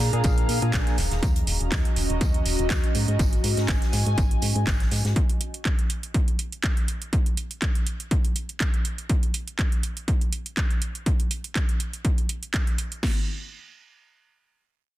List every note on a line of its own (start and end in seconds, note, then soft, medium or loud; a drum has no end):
0.00 0.11 A#2 medium
0.00 0.98 D4 medium
0.00 1.73 G#4 medium
0.00 1.77 F5 medium
0.00 3.65 A#5 medium
0.00 snare medium
0.00 open hi-hat loud
0.00 tambourine medium
0.13 0.22 A#2 medium
0.13 0.23 A#2 medium
0.13 0.23 D4 medium
0.13 0.23 G#4 medium
0.13 0.23 A#4 medium
0.13 0.23 G#5 medium
0.13 closed hi-hat soft
0.24 0.45 A#1 medium
0.24 0.59 A#2 loud
0.24 0.59 D4 medium
0.24 0.59 G#4 medium
0.24 0.59 A#4 medium
0.24 0.59 F5 loud
0.24 kick loud
0.24 closed hi-hat medium
0.24 tambourine medium
0.38 closed hi-hat soft
0.49 0.60 A#2 medium
0.49 open hi-hat loud
0.49 tambourine medium
0.62 0.71 A#2 loud
0.62 0.97 A#2 medium
0.62 0.97 D4 medium
0.62 0.97 G#4 medium
0.62 0.97 A#4 medium
0.62 0.97 G#5 loud
0.62 closed hi-hat soft
0.73 0.84 A#1 medium
0.73 kick loud
0.73 snare loud
0.73 clap loud
0.73 closed hi-hat medium
0.73 tambourine medium
0.87 snare soft
0.87 closed hi-hat soft
0.98 1.09 D#1 medium
0.98 5.16 C#4 medium
0.98 snare soft
0.98 open hi-hat loud
0.98 tambourine medium
1.11 1.21 D#1 medium
1.11 5.16 D#5 medium
1.11 snare soft
1.11 closed hi-hat soft
1.21 1.43 D#2 loud
1.21 5.16 F#4 medium
1.21 kick loud
1.21 closed hi-hat medium
1.21 tambourine medium
1.36 closed hi-hat soft
1.47 1.58 D#1 medium
1.47 open hi-hat loud
1.47 tambourine medium
1.61 1.70 D#1 medium
1.61 closed hi-hat soft
1.72 1.83 D#2 medium
1.72 kick loud
1.72 snare loud
1.72 clap loud
1.72 closed hi-hat medium
1.72 tambourine medium
1.85 closed hi-hat soft
1.96 2.07 D#1 medium
1.96 open hi-hat loud
1.96 tambourine medium
2.10 2.19 D#1 medium
2.10 closed hi-hat soft
2.21 2.41 D#2 medium
2.21 kick loud
2.21 closed hi-hat medium
2.21 tambourine medium
2.34 closed hi-hat soft
2.46 2.56 D#1 medium
2.46 open hi-hat loud
2.46 tambourine medium
2.59 2.68 D#1 loud
2.59 closed hi-hat soft
2.69 2.81 D#2 medium
2.69 kick loud
2.69 snare loud
2.69 clap loud
2.69 closed hi-hat medium
2.69 tambourine medium
2.84 closed hi-hat soft
2.95 3.06 G#2 medium
2.95 open hi-hat loud
2.95 tambourine medium
3.08 3.17 G#2 medium
3.08 closed hi-hat soft
3.18 3.40 G#1 medium
3.18 5.16 G#5 medium
3.18 kick loud
3.18 closed hi-hat medium
3.18 tambourine medium
3.33 closed hi-hat soft
3.44 3.55 G#2 medium
3.44 open hi-hat loud
3.44 tambourine medium
3.57 3.66 G#2 medium
3.57 snare soft
3.57 closed hi-hat soft
3.68 3.79 G#1 medium
3.68 kick loud
3.68 snare loud
3.68 clap loud
3.68 closed hi-hat medium
3.68 tambourine medium
3.82 snare soft
3.82 closed hi-hat soft
3.93 4.04 G#2 medium
3.93 snare medium
3.93 open hi-hat loud
3.93 tambourine medium
4.06 4.16 G#2 medium
4.06 closed hi-hat soft
4.18 4.38 G#1 medium
4.18 kick loud
4.18 closed hi-hat medium
4.18 tambourine medium
4.31 closed hi-hat soft
4.42 4.53 G#2 medium
4.42 open hi-hat loud
4.42 tambourine medium
4.56 4.65 G#2 loud
4.56 closed hi-hat soft
4.67 4.87 G#1 medium
4.67 kick loud
4.67 snare loud
4.67 clap loud
4.67 closed hi-hat medium
4.67 tambourine medium
4.80 snare soft
4.80 closed hi-hat soft
4.91 5.02 G#2 medium
4.91 snare soft
4.91 open hi-hat loud
4.91 tambourine medium
5.05 5.14 G#2 medium
5.05 snare soft
5.05 closed hi-hat soft
5.16 kick loud
5.16 closed hi-hat medium
5.29 closed hi-hat soft
5.41 closed hi-hat medium
5.54 closed hi-hat soft
5.65 kick loud
5.65 clap loud
5.65 closed hi-hat medium
5.79 closed hi-hat soft
5.90 closed hi-hat medium
6.03 closed hi-hat soft
6.14 kick loud
6.14 closed hi-hat medium
6.28 closed hi-hat soft
6.39 closed hi-hat medium
6.52 closed hi-hat soft
6.64 kick loud
6.64 clap loud
6.64 closed hi-hat medium
6.77 closed hi-hat soft
6.88 closed hi-hat medium
7.02 closed hi-hat soft
7.13 kick loud
7.13 closed hi-hat medium
7.26 closed hi-hat soft
7.37 closed hi-hat medium
7.51 closed hi-hat soft
7.62 kick loud
7.62 clap loud
7.62 closed hi-hat medium
7.75 closed hi-hat soft
7.87 closed hi-hat medium
8.00 closed hi-hat soft
8.11 kick loud
8.11 closed hi-hat medium
8.25 closed hi-hat soft
8.36 closed hi-hat medium
8.49 closed hi-hat soft
8.60 kick loud
8.60 clap loud
8.60 closed hi-hat medium
8.74 closed hi-hat soft
8.85 closed hi-hat medium
8.98 closed hi-hat soft
9.09 kick loud
9.09 closed hi-hat medium
9.23 closed hi-hat soft
9.34 closed hi-hat medium
9.48 closed hi-hat soft
9.59 kick loud
9.59 clap loud
9.59 closed hi-hat medium
9.72 closed hi-hat soft
9.83 closed hi-hat medium
9.97 closed hi-hat soft
10.08 kick loud
10.08 closed hi-hat medium
10.21 closed hi-hat soft
10.33 closed hi-hat medium
10.46 closed hi-hat soft
10.57 kick loud
10.57 clap loud
10.57 closed hi-hat medium
10.71 closed hi-hat soft
10.82 closed hi-hat medium
10.95 closed hi-hat soft
11.06 kick loud
11.06 closed hi-hat medium
11.20 closed hi-hat soft
11.31 closed hi-hat medium
11.44 closed hi-hat soft
11.55 kick loud
11.55 clap loud
11.55 closed hi-hat medium
11.69 closed hi-hat soft
11.80 closed hi-hat medium
11.93 closed hi-hat soft
12.05 kick loud
12.05 closed hi-hat medium
12.18 closed hi-hat soft
12.29 closed hi-hat medium
12.43 closed hi-hat soft
12.54 kick loud
12.54 clap loud
12.54 closed hi-hat medium
12.67 closed hi-hat soft
12.78 closed hi-hat medium
12.92 closed hi-hat soft
13.03 kick medium
13.03 snare medium
13.03 crash medium